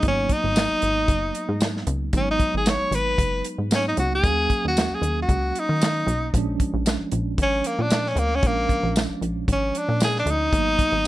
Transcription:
0.02 G#1 F#3 A#3 B3 D#4, kick, closed hi-hat
0.08 C#4
0.29 D#4, kick, closed hi-hat
0.44 G#1
0.56 snare, closed hi-hat, tambourine
0.82 G#1, closed hi-hat
1.08 F#1, kick, closed hi-hat
1.35 closed hi-hat
1.49 G#2
1.61 snare, closed hi-hat, tambourine
1.77 snare
1.87 C#2, closed hi-hat
2.13 G#1 F#3 G#3 B3 D#4, kick, closed hi-hat
2.17 C#4
2.31 D#4
2.39 kick, closed hi-hat
2.54 G#1 G#4
2.66 C#5, snare, closed hi-hat, tambourine
2.91 G#1 B4, closed hi-hat
3.18 F#1, kick, closed hi-hat
3.44 closed hi-hat
3.58 G#2
3.71 F#3 A#3 B3 C#4 D#4, snare, closed hi-hat, tambourine
3.88 D#4
3.97 C#2 F#4, closed hi-hat
4.15 G#4
4.23 D#2 F#3 A#3 C#4 F5, kick, closed hi-hat
4.50 kick, closed hi-hat
4.64 D#2 F#4
4.77 snare, closed hi-hat, tambourine
4.90 D#2
4.95 G#4
5.02 D#2, closed hi-hat
5.22 F#4
5.29 C#2, kick, closed hi-hat
5.55 D#4, closed hi-hat
5.69 D#3
5.82 snare, closed hi-hat, tambourine
6.07 B1, closed hi-hat
6.33 A#1 F3 G#3 C#4 D4, kick, closed hi-hat
6.60 kick, closed hi-hat
6.74 A#1
6.86 snare, closed hi-hat, tambourine
7.12 A#1, closed hi-hat
7.38 G#1, kick, closed hi-hat
7.43 C#4
7.64 A#3, closed hi-hat
7.79 A#2 D4
7.90 snare, closed hi-hat, tambourine
8.06 C#4, snare
8.16 D2 A#3, closed hi-hat
8.35 C#4
8.43 A#1 F3 G#3 C#4 D4, kick, closed hi-hat
8.47 A#3
8.69 kick, closed hi-hat
8.83 A#1
8.96 snare, closed hi-hat, tambourine
9.21 A#1, closed hi-hat
9.48 G#1, kick, closed hi-hat
9.52 C#4
9.75 D4, closed hi-hat
9.89 A#2
10.00 G#4, snare, closed hi-hat, tambourine
10.16 D4, snare
10.26 D2, closed hi-hat
10.30 D#4
10.52 G#1 F#3 A#3 B3 D#4, kick, closed hi-hat
10.79 kick, closed hi-hat
10.92 G#1

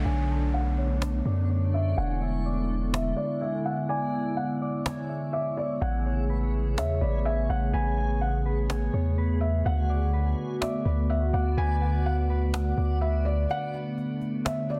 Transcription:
Already playing: D3 A3 B3 D4 A4 C#5 D5, downlifter
0.05 B1 C#5 G#5
0.29 A5
0.54 F#5
0.78 C#5
1.01 A5, cajon slap
1.25 F#2 D5
1.50 C#5
1.74 E5
1.97 E1 D3 G#3 E4 D5 F#5 G#5
2.21 E5
2.46 D5
2.93 E5, cajon slap
3.16 D5
3.41 E5 G#5
3.65 E5 F#5
3.89 C#5 D5 G#5
4.14 G#5
4.37 F#5
4.62 D5
4.86 G#5, cajon slap
5.09 E5
5.33 D5 E5
5.57 D5
5.81 A1 C#3 A3 B3 G#4 F#5 G#5
6.06 C#5
6.29 B4
6.77 E2 C#5 E5, cajon slap
7.01 A1 B4 D5
7.25 E5 G#5
7.49 A1 C#5 F#5
7.73 A1 G#4 B4 G#5
7.98 G#5
8.21 F#5
8.45 B4
8.69 G#5, cajon slap
8.93 E2 C#5
9.18 B4
9.41 E5
9.65 D2 D3 B3 F#4 D5 F#5
9.89 D5
10.13 B4
10.61 D5 E5, cajon slap
10.85 D2 B4 D5
11.10 E5 F#5
11.33 D2 D5 F#5
11.57 D2 B4 G#5
11.81 F#5
12.06 F#5
12.30 B4
12.53 F#5, cajon slap
12.77 D2 D5
13.01 B4 E5
13.25 D5
13.49 D3 A3 B3 D4 C#5 F#5, cajon slap
13.74 cajon slap
13.98 cajon slap
14.21 cajon slap
14.45 E5, cajon slap
14.69 D5, cajon slap

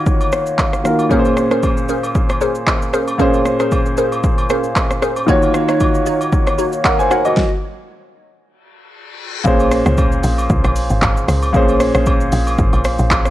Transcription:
Already playing: D#3 A#3 F4 F#4 C#5
0.06 kick, shaker
0.21 high agogo, shaker
0.32 cross-stick, shaker
0.46 shaker
0.59 kick, clap, high agogo, low woodblock, shaker
0.73 cross-stick, shaker
0.84 D#3 A#3 F4 F#4 A#4, cross-stick, shaker
0.99 high agogo, shaker
1.09 A#2 A#3 C#4 G#4 A#4 C5, kick, shaker
1.19 C5
1.25 high agogo, shaker
1.37 cross-stick, shaker
1.51 C#4 G#4 A#4 C5, cross-stick, shaker
1.63 kick, high agogo, shaker
1.77 shaker
1.89 C#4 G#4 A#4 C5, shaker
2.03 high agogo, shaker
2.15 kick, shaker
2.29 cross-stick, high agogo, shaker
2.41 C#4 G#4 A#4 C5, shaker
2.55 shaker
2.67 kick, clap, high agogo, low woodblock, shaker
2.82 shaker
2.93 C#4 G#4 A#4 C5, cross-stick, shaker
3.08 high agogo, shaker
3.18 A#2 A#3 C#4 G#4 A#4 C5, kick, shaker
3.34 high agogo, shaker
3.45 cross-stick, shaker
3.60 C#4 G#4 A#4 C5, cross-stick, shaker
3.71 kick, high agogo, shaker
3.86 shaker
3.97 C#4 G#4 A#4 C5, shaker
4.12 high agogo, shaker
4.24 kick, shaker
4.38 high agogo, shaker
4.50 C#4 G#4 A#4 C5, cross-stick, shaker
4.64 shaker
4.76 kick, clap, high agogo, low woodblock, shaker
4.91 cross-stick, shaker
5.02 C#4 G#4 A#4 C5, cross-stick, shaker
5.16 high agogo, shaker
5.27 D#3 A#3 D#4 F4 F#4 C#5, kick, shaker
5.42 high agogo, shaker
5.54 cross-stick, shaker
5.68 D#4 F#4 C#5, cross-stick, shaker
5.80 kick, high agogo, shaker
5.95 shaker
6.06 D#4 F#4 C#5, shaker
6.21 high agogo, shaker
6.33 kick, shaker
6.47 cross-stick, high agogo, shaker
6.58 D#4 F#4 C#5, shaker
6.73 shaker
6.85 A#4 F#5, kick, clap, high agogo, low woodblock, shaker
6.99 C5 G#5, shaker
7.11 D#4 F#4 A#4 C#5 F#5, cross-stick, shaker
7.25 F#4 D#5, high agogo, shaker
7.37 kick, snare
8.41 reverse cymbal
9.44 A#1 A#2 A#3 C#4 G#4 C5, kick, shaker
9.60 high agogo, shaker
9.71 cross-stick, open hi-hat, shaker
9.86 C#2, cross-stick, shaker
9.98 kick, high agogo, shaker
10.12 shaker
10.23 A#1, open hi-hat, shaker
10.38 high agogo, shaker
10.50 C#2, kick, shaker
10.64 A#1, cross-stick, high agogo, shaker
10.76 open hi-hat, shaker
10.90 G#1, shaker
11.02 G#1, kick, clap, high agogo, shaker
11.17 shaker
11.28 C#2, cross-stick, open hi-hat, shaker
11.43 high agogo, shaker
11.53 A#1 A#2 A#3 C#4 G#4 C5, kick, shaker
11.68 high agogo, shaker
11.80 cross-stick, open hi-hat, shaker
11.95 A#1, cross-stick, shaker
12.06 kick, high agogo, shaker
12.21 shaker
12.32 A#1, open hi-hat, shaker
12.47 high agogo, shaker
12.58 G#1, kick, shaker
12.73 A#1, high agogo, shaker
12.84 cross-stick, open hi-hat, shaker
12.99 A#1, shaker
13.11 kick, clap, high agogo, shaker
13.25 cross-stick, shaker

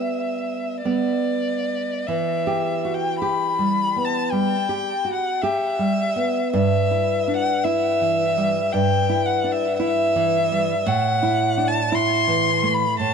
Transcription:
Already playing: G3 B3 E5
0.85 G3 B3 D5
2.07 E3 E5
2.47 G4
2.85 F#4
2.94 G5
3.21 G4 B5
3.59 G3
3.96 B3
4.05 A5
4.31 G3 G5
4.69 G4
5.05 F#4
5.14 F#5
5.42 G4 E5
5.79 G3
6.16 B3
6.53 G2 E5
6.91 E4
7.28 D4
7.36 F#5
7.64 E4 E5
8.01 E3
8.37 G3
8.73 G2 G5
9.09 E4
9.26 F#5
9.44 D4
9.52 E5
9.78 E4 E5
10.16 E3
10.52 G3
10.86 A2 F#5
11.23 E4
11.57 D4
11.68 A5
11.92 E4 C6
12.28 E3
12.63 A3
12.74 B5
13.00 A2 A5

